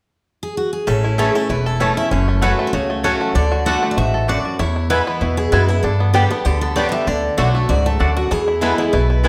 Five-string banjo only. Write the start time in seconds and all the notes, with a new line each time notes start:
0.88 C#4
1.04 E4
1.19 A4
1.36 A3
1.50 E4
1.66 A4
1.81 C#4
1.97 E4
2.12 C#4
2.28 A3
2.42 F#4
2.59 A3
2.74 F#4
2.90 A3
3.04 C#4
3.21 F#4
3.35 D4
3.52 F#4
3.66 A4
3.83 A3
3.97 F#4
4.14 A4
4.28 D4
4.45 F#4
4.60 E4
4.76 E4
4.91 E4
5.07 B3
5.22 E4
5.38 E4
5.53 E4
5.69 E4
5.84 D4
6.00 B3
6.15 G4
6.31 B3
6.46 G4
6.62 B3
6.77 D4
6.93 G4
7.08 D4
7.38 F#4
7.55 A3
7.70 F#4
7.86 A3
8.00 D4
8.17 F#4
8.31 E3
8.48 E4
8.62 E4
8.79 E4
8.94 E4
9.10 E4
9.25 E4